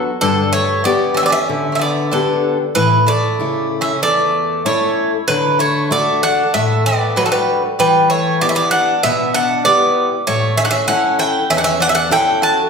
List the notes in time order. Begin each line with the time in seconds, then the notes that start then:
0.21 G2 D3 A4
0.52 A3 C#5
0.84 B3 D4 G4 D5
1.14 C#4 E5
1.23 B3 D5
1.30 C#4 E5
1.49 D3
1.72 C#4 E5
1.79 B3 D5
2.11 D3 B3 D4 G4 A4
2.75 A2 E3 B4
3.07 A3 D5
3.39 C#3 A3 E4
3.81 C#4 E5
4.02 E2 A3 D5
4.65 A3 C#4 E4 C#5
5.28 D3 F#3 B4
5.59 A3 C#5
5.91 A3 D4 F#4 D5
6.23 D4 F#5
6.54 A2 A3 E5
6.86 B3 D5
7.16 F#3 A3 D4 F#4 B4
7.26 F#3 A4
7.32 G3 B4
7.79 E3 G3 B4
8.10 A3 C#5
8.41 B3 E4 G4 D5
8.49 C#4 E5
8.55 B3 D5
8.71 D4 F#5
9.03 B2 B3 E5
9.34 D4 F#5
9.65 B3 E4 G4 D5
10.27 A2 A3 C#5
10.57 C#4 E5
10.65 D4 F#5
10.71 C#4 E5
10.88 C#4 E4 A4 F#5
11.19 E4 G5
11.50 E2 C#4 E5
11.57 D4 F#5
11.64 C#4 E5
11.80 D4 F#5
11.87 C#4 E5
11.95 D4 F#5
12.10 C#4 E4 A4 G5
12.42 F#4 A5